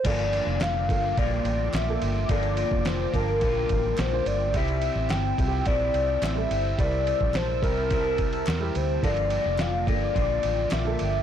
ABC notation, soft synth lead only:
X:1
M:4/4
L:1/16
Q:1/4=107
K:Gdor
V:1 name="Soft synth lead"
d4 f4 d2 d2 e3- e/2 e/2 | d4 c2 B6 c2 d2 | e4 g4 d4 e4 | d2 d2 c2 B8 c2 |
d4 f2 d6 e4 |]